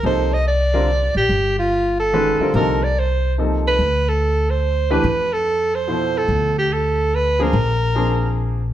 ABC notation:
X:1
M:3/4
L:1/8
Q:"Swing" 1/4=144
K:Cdor
V:1 name="Soprano saxophone"
c e d3 G- | G F2 A3 | B d c2 z =B- | =B A2 c2 B- |
=B A2 c2 A- | A G A2 =B _B- | B4 z2 |]
V:2 name="Upright piano"
[C,F,B,EA] z2 [D,G,CFB] z2 | z4 [E,_A,_D^F=B] [=D,G,C=F_B] | [C,F,B,EA] z3 [C,F,B,EA]2 | z4 z [=E,A,DG=B] |
z4 [=B,,F,=EAc]2- | [=B,,F,=EAc] z4 [F,_B,CD_A] | z2 [F,B,CD_A]3 z |]
V:3 name="Upright bass" clef=bass
C,,4- C,, B,,, | G,,,4- G,,, z | C,,6 | D,,6 |
F,,6 | D,,6 | B,,,6 |]